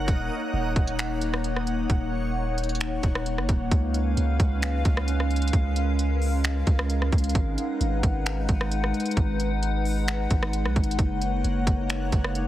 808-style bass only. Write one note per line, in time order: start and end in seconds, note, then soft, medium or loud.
0.08 0.30 D#1 loud
0.53 0.75 D#1 loud
0.76 1.86 D#1 loud
1.90 2.99 D#1 loud
3.03 3.39 D#1 loud
3.37 3.48 F#1 loud
3.49 3.71 D#1 loud
3.71 4.15 C#2 loud
4.17 4.39 C#2 loud
4.40 4.83 C#2 loud
4.85 5.51 C#2 loud
5.53 6.63 C#2 loud
6.67 7.11 C#2 loud
7.12 7.34 C#2 loud
7.35 7.57 G#1 loud
7.81 8.02 G#1 loud
8.03 8.47 G#1 loud
8.49 8.92 G#1 loud
9.17 10.27 G#1 loud
10.31 10.66 G#1 loud
10.65 10.75 B1 loud
10.76 10.98 G#1 loud
10.99 11.42 F#1 loud
11.44 11.66 F#1 loud
11.67 12.11 F#1 loud
12.12 12.48 F#1 loud